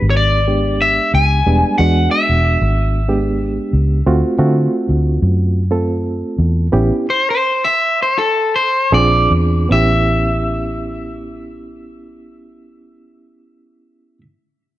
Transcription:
Already playing: reed electric piano G#3 B3 D4 G4
0.02 fingered electric bass G#1
0.10 clean electric guitar C#5
0.17 clean electric guitar D5
0.47 reed electric piano G#3 B3 D4 G4
0.82 clean electric guitar E5
1.14 fingered electric bass C#2, clean electric guitar G#5
1.46 fingered electric bass E1, reed electric piano G3 G#3 B3 D4
1.78 fingered electric bass E2, reed electric piano G#3 B3 D4 F#4, clean electric guitar F#5
2.11 clean electric guitar E5
2.29 fingered electric bass E1
2.61 fingered electric bass G#1
3.08 reed electric piano G#3 B3 D4 G4
3.73 fingered electric bass C#2
4.06 fingered electric bass D2, reed electric piano A3 C4 F4 F#4
4.39 fingered electric bass D3, reed electric piano A3 C4 F4 F#4
4.89 fingered electric bass D2
5.22 fingered electric bass F#2
5.71 reed electric piano A3 C4 F4 A4
6.28 clean electric guitar D5
6.39 fingered electric bass E2
6.72 fingered electric bass A1, reed electric piano B3 C#4 E4 G4
7.10 clean electric guitar C5
7.30 clean electric guitar C5
7.65 clean electric guitar E5
8.02 clean electric guitar C5
8.18 clean electric guitar A4
8.56 clean electric guitar C5
8.92 fingered electric bass A#1, reed electric piano C4 D4 F4 G#4, clean electric guitar D5
9.31 fingered electric bass E2
9.69 fingered electric bass A1, reed electric piano B3 C#4 E4, clean electric guitar E5
9.73 reed electric piano G4

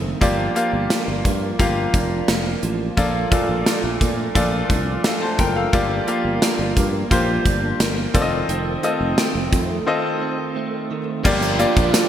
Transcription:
Already playing: fretless electric bass F#1, clean electric guitar D#3 A3 C4, grand piano C4 F4 A4 D#5
0.21 fretless electric bass G1, clean electric guitar F3 D4, grand piano A#3 F4 G4 D5, kick, closed hi-hat
0.55 grand piano A#3 F4 G4 F5, clean electric guitar A#3, closed hi-hat
0.73 fretless electric bass G1
0.90 clean electric guitar D4, snare, closed hi-hat
1.08 fretless electric bass G1
1.25 fretless electric bass G2, clean electric guitar A#3, kick, closed hi-hat
1.59 fretless electric bass G1, clean electric guitar F3, grand piano A#3 F4 G4 F5, kick, closed hi-hat
1.94 fretless electric bass F1, clean electric guitar D4, kick, closed hi-hat
2.28 fretless electric bass F1, clean electric guitar A#3, snare, closed hi-hat
2.63 fretless electric bass A1, clean electric guitar F3, closed hi-hat
2.97 fretless electric bass A#1, clean electric guitar F3 D4, grand piano A#3 F4 A4 D5, kick, closed hi-hat
3.31 grand piano A#2 F4 A4 D5, clean electric guitar A3, kick, closed hi-hat
3.49 fretless electric bass A#1
3.66 clean electric guitar D4, snare, closed hi-hat
3.84 fretless electric bass A#1
4.01 fretless electric bass A#2, clean electric guitar A3, kick, closed hi-hat
4.35 fretless electric bass A#1, grand piano A#2 F4 A4 D5, clean electric guitar F3, kick, closed hi-hat
4.70 fretless electric bass C2, clean electric guitar D4, kick, closed hi-hat
5.04 clean electric guitar A3, grand piano A4 F5, snare, closed hi-hat
5.22 grand piano C5 A5
5.39 fretless electric bass F#1, clean electric guitar F3, grand piano A#4 G5, kick, closed hi-hat
5.56 grand piano A4 F5
5.73 fretless electric bass G1, clean electric guitar F3 D4, grand piano A#3 F4 G4 D5, kick, closed hi-hat
6.07 grand piano A#3 F4 G4 F5, clean electric guitar A#3, closed hi-hat
6.25 fretless electric bass G1
6.42 clean electric guitar D4, snare, closed hi-hat
6.59 fretless electric bass G1
6.77 fretless electric bass G2, clean electric guitar A#3, kick, closed hi-hat
7.11 fretless electric bass A#1, clean electric guitar F3, grand piano A#3 F4 G4 C5, kick, closed hi-hat
7.45 fretless electric bass G1, clean electric guitar D4, kick, closed hi-hat
7.80 fretless electric bass G1, clean electric guitar A#3, snare, closed hi-hat
8.14 fretless electric bass F1, clean electric guitar D#3, grand piano C4 F4 A4 D5, kick, closed hi-hat
8.22 grand piano D#5
8.49 fretless electric bass F1, clean electric guitar D#3 C4, closed hi-hat
8.83 clean electric guitar A3, grand piano C4 F4 A4 D#5, closed hi-hat
9.01 fretless electric bass F1
9.18 clean electric guitar C4, snare, closed hi-hat
9.35 fretless electric bass F1
9.52 fretless electric bass F2, clean electric guitar A3, kick, closed hi-hat
9.86 clean electric guitar D#3, grand piano C4 F4 A4 D#5
10.21 clean electric guitar C4
10.56 clean electric guitar A3
10.91 clean electric guitar D#3
11.23 fretless electric bass G1, overdriven electric guitar G2 D3, clean electric guitar F3, grand piano A#3 F4 G4 D5, analog synth pad A#3 F4 D5 G5, kick, crash, shaker
11.29 overdriven electric guitar G3
11.42 clean electric guitar A#3, closed hi-hat, shaker
11.59 grand piano A#3 F4 G4 D5, clean electric guitar D4, closed hi-hat, shaker
11.76 fretless electric bass A#1, clean electric guitar A#3, kick, closed hi-hat, shaker
11.94 clean electric guitar D4, snare, closed hi-hat, tambourine, shaker

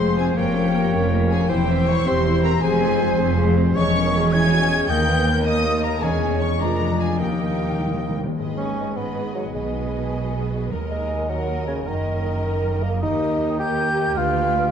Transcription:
Already playing: double bass section F1, cello section F2, harp F3 F4 G#4 C5, bassoon C4, french horn section G#4, violin section C5 C6, oboe C5, flute C6
0.00 viola section G#3 G#4, harp F5
0.17 viola section C4 F4, harp G#4, violin section G#4 G#5, flute G#5
0.36 double bass section F1, cello section F2, harp F3, viola section A#3 A#4, bassoon A#3, violin section G4 G5, french horn section C5, oboe C#5, flute G5
0.55 harp A#3, viola section C#4 G4, french horn section A#4
0.73 viola section A#3 A#4, french horn section G4
0.93 double bass section F1, cello section F2, viola section C#4 G4, french horn section A#4, harp C#5
1.11 viola section A#3 A#4, french horn section G#4, harp A#4
1.30 viola section C#4 G4, violin section G#4 G#5, french horn section A#4, flute G#5
1.49 double bass section E1, cello section E2, harp E3, bassoon C4, viola section E4 C5, violin section G4 G5, oboe C5, french horn section C5, flute G5
1.68 viola section C4 E5, harp C4
1.86 viola section E4 C5, harp G4, violin section C#5 C#6, flute C#6
2.06 double bass section E1, cello section E2, viola section C4 E5, bassoon C4, french horn section G4, oboe C5, violin section C5 C6, harp C5, flute C6
2.24 viola section E4 C5
2.43 viola section C4 E5, violin section A#4 A#5, harp C5, flute A#5
2.62 double bass section F1, cello section F2, harp F3, viola section G#3 C5, bassoon C4, french horn section G#4, violin section G#4 G#5, oboe C5, flute G#5
2.82 viola section C4 G#4, harp F4
3.00 viola section G#3 C5
3.19 double bass section F1, cello section F2, viola section C4 G#4, harp F4, french horn section C5
3.38 viola section G#3 C5, french horn section G#4, harp F5
3.56 viola section C4 G#4, french horn section G4, harp C5
3.74 double bass section E1, cello section E2, harp E3, bassoon G#3, viola section C#4 G#4, french horn section G#4, violin section C#5 C#6, oboe C#5, flute C#6
3.95 harp C#4, french horn section A#4
4.17 french horn section G#4
4.32 bassoon G#3, french horn section E4, harp G#4, oboe C#5, violin section G#5 G#6, flute G#6
4.52 french horn section F#4, harp C#5
4.70 french horn section G#4, harp G#4
4.88 double bass section D#2, cello section D#2, harp D#3, bassoon A#3, viola section A#3 A#4, french horn section A#4, oboe D#5, violin section G5 G6, flute G6
5.07 french horn section B4
5.27 french horn section A#4, harp A#4
5.45 bassoon A#3, harp D#4, violin section D#5 D#6, oboe D#5, flute D#6
5.66 harp D#5
5.83 violin section A#4 A#5, harp A#4, flute A#5
6.01 double bass section E1, cello section E2, harp E3, bassoon G#3, viola section C#4 G#4, french horn section G#4, violin section G#4 G#5, oboe C#5, flute G#5
6.23 harp C#4
6.40 harp C#4 C#5, violin section C#5 C#6, flute C#6
6.60 double bass section F1, cello section F2, harp F3, bassoon G#3, viola section D4, french horn section F4, violin section A#4 A#5, oboe D5, flute A#5
6.81 harp D4
7.00 harp D4 A#4, violin section G#4 G#5, flute G#5
7.19 double bass section D#2, cello section D#2, timpani D#3, harp D#3, bassoon A#3, viola section D#4 A#4, french horn section G4, violin section G4 G5, oboe D#5, flute G5
7.27 timpani D#3
7.40 timpani D#3, harp D#4
7.50 timpani D#3
7.57 timpani D#3, harp A#4
7.65 timpani D#3
7.72 timpani D#3
7.79 timpani D#3, harp D#4
7.87 timpani D#3
7.94 timpani D#3, harp D#5
8.02 timpani D#3
8.09 timpani D#3
8.17 timpani D#3, harp A#4
8.24 timpani D#3
8.37 double bass section G#1, harp G#2, cello section G#2, viola section G#4, violin section B4 D#5
8.48 harp B3
8.57 bassoon C#4, harp D#4, flute C#6
8.67 harp G#4
8.76 french horn section G#4 D#5, harp B4
8.86 harp D#5
8.95 bassoon B3, viola section G#4, violin section B4 D#5, harp G#5, flute B5
9.06 harp D#5
9.16 harp G#4
9.25 harp D#4
9.35 bassoon F#3, harp B3, french horn section G#4 D#5, flute F#5
9.45 harp D#3
9.54 double bass section B1, harp B2, cello section B2, bassoon G#3, viola section G#4, violin section B4 D#5, flute G#5
9.65 harp B3
9.75 harp D#4
9.85 harp G#4
9.95 french horn section G#4 D#5, harp B4
10.05 harp D#5
10.14 harp G#5
10.24 harp D#5
10.33 harp G#4
10.43 harp D#4
10.52 harp B3, french horn section G#4 D#5
10.62 harp G#3
10.70 double bass section D#2, cello section D#2, harp D#3, viola section A#4, violin section A#4 D#5
10.81 harp D#4
10.91 bassoon G#3, harp A#4, flute G#5
11.01 harp D#4
11.10 french horn section A#4 D#5, harp D#5
11.20 harp A#5
11.28 bassoon F#3, viola section A#4, violin section A#4 D#5, harp D#5, flute F#5
11.40 harp A#5
11.49 harp A#4
11.59 harp D#4
11.67 bassoon C#3, harp A#3, french horn section A#4 D#5, flute C#5
11.78 harp D#4
11.86 double bass section F#1, cello section F#2, harp F#2, bassoon D#3, viola section A#4, violin section A#4 D#5, flute D#5
11.98 harp A#3
12.07 harp D#4
12.17 harp A#4
12.25 harp D#4, french horn section A#4 D#5
12.36 harp D#5
12.46 harp A#5
12.55 harp D#5
12.65 harp A#4
12.74 harp D#4
12.83 bassoon A#3, harp A#3, french horn section A#4 D#5, flute A#5
12.94 harp F#3
13.01 cello section D#2, double bass section D#2, harp D#3, bassoon D#4, viola section G4, french horn section G4 A#4, violin section A#4 D#5, flute D#6
13.12 harp A#3
13.22 harp G4
13.32 harp A#4
13.41 harp G4
13.51 harp G5
13.58 french horn section G4 A#4, bassoon G4, viola section G4, violin section A#4 D#5, harp A#5, flute G6
13.69 harp G5
13.79 harp A#4
13.99 harp A#3
14.08 harp D#4
14.16 double bass section D2, cello section D2, harp D3, bassoon F4, viola section G4, french horn section G4 B4, violin section B4 G5, flute F6
14.27 harp D4
14.47 harp B4
14.56 harp D5
14.66 harp G5

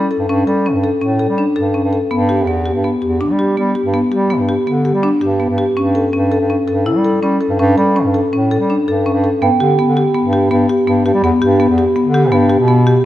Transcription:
0.11 marimba A4
0.19 bass clarinet G2
0.28 bass clarinet G2, marimba C#4
0.46 bass clarinet G3, marimba A4
0.66 marimba C#4
0.74 bass clarinet G2
0.84 marimba A4
1.01 bass clarinet A2, marimba C#4
1.19 marimba A4
1.29 bass clarinet G3
1.38 marimba D4
1.56 bass clarinet G2, marimba A4
1.74 marimba C#4
1.83 bass clarinet G2
1.93 marimba A4
2.11 bass clarinet G2, marimba B3
2.29 marimba G4
2.47 bass clarinet E2, marimba B3
2.66 marimba G4
2.74 bass clarinet G2
2.84 marimba B3
3.02 bass clarinet E2, marimba G4
3.21 marimba D4
3.29 bass clarinet G3
3.39 marimba G4
3.57 bass clarinet G3, marimba B3
3.75 marimba G4
3.85 bass clarinet G2
3.94 marimba B3
4.12 bass clarinet G3, marimba G4
4.30 marimba B3
4.39 bass clarinet G2
4.49 marimba G4
4.67 bass clarinet D3, marimba B3
4.85 marimba G4
4.94 bass clarinet G3
5.03 marimba D4
5.21 bass clarinet G2, marimba G4
5.40 marimba B3
5.49 bass clarinet G2
5.58 marimba G4
5.77 bass clarinet G2, marimba C#4
5.95 marimba A4
6.13 bass clarinet G2, marimba C#4
6.32 marimba A4
6.40 bass clarinet G2
6.50 marimba C#4
6.68 bass clarinet G2, marimba A4
6.86 marimba E4
6.95 bass clarinet G3
7.05 marimba A4
7.22 bass clarinet G3, marimba C#4
7.41 marimba A4
7.50 bass clarinet G2
7.59 bass clarinet G2, marimba C#4
7.77 bass clarinet G3, marimba A4
7.96 marimba C#4
8.05 bass clarinet G2
8.14 marimba A4
8.32 bass clarinet A2, marimba C#4
8.51 marimba A4
8.60 bass clarinet G3
8.70 marimba D4
8.87 bass clarinet G2, marimba A4
9.06 marimba C#4
9.14 bass clarinet G2
9.24 marimba A4
9.42 bass clarinet G2, marimba B3, celesta G5
9.60 bass clarinet D3, marimba G4
9.79 marimba B3
9.87 bass clarinet D3
9.97 marimba G4
10.14 marimba B3
10.24 bass clarinet G2
10.33 marimba G4
10.51 bass clarinet G2, marimba B3
10.69 marimba G4
10.87 bass clarinet G2, marimba B3
11.05 bass clarinet G2, marimba G4
11.14 bass clarinet G3
11.23 bass clarinet E2, marimba B3
11.42 bass clarinet G2, marimba G4
11.60 marimba B3
11.69 bass clarinet E2
11.78 marimba G4
11.96 marimba B3
12.05 bass clarinet D3
12.14 marimba G4
12.32 bass clarinet G2, marimba B3
12.50 marimba G4
12.59 bass clarinet B2
12.68 marimba B3
12.87 marimba G4

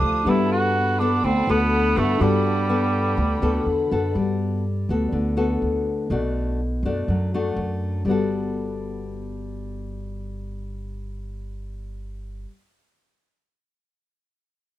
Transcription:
Already playing: nylon-string guitar F3, cor anglais D4, tine electric piano F4 G4 A4 C5, string section A4 F5 D#6
0.02 upright bass D2
0.24 upright bass G2, nylon-string guitar G3 B3 F#4 A4, tine electric piano D4 F#4, string section F#5 B5
0.28 cor anglais E4, tine electric piano A4 B4
0.52 cor anglais F#4
0.99 nylon-string guitar B3 F#4 A4, cor anglais D4
1.24 upright bass D2, nylon-string guitar D3, cor anglais C4
1.47 upright bass D2, nylon-string guitar B3 F#4 A4, cor anglais B3
1.96 upright bass G2, cor anglais A3, nylon-string guitar B3 F#4 A4
2.18 upright bass G2, nylon-string guitar G3 B3 F#4, tine electric piano D4 F#4
2.22 cor anglais G3, nylon-string guitar A4, tine electric piano A4 D5
2.69 nylon-string guitar B3 F#4 A4
3.17 upright bass D2, nylon-string guitar D3
3.42 upright bass D2, nylon-string guitar B3 F#4 A4
3.66 upright bass E2
3.91 upright bass F#2, nylon-string guitar B3 F#4 A4
4.15 upright bass G2, nylon-string guitar G3
4.89 upright bass D2, nylon-string guitar B3 F#4 A4
5.12 upright bass D2, nylon-string guitar D3
5.37 nylon-string guitar B3 F#4 A4
5.62 upright bass D2
6.10 upright bass B1, nylon-string guitar B2 A3 D4 F#4
6.83 upright bass F#2, nylon-string guitar A3 D4 F#4
7.08 upright bass F#2, nylon-string guitar F#3
7.34 nylon-string guitar A3 D4 F#4
7.56 upright bass F#2
8.05 upright bass G1, nylon-string guitar G3 B3
8.09 nylon-string guitar F#4 A4

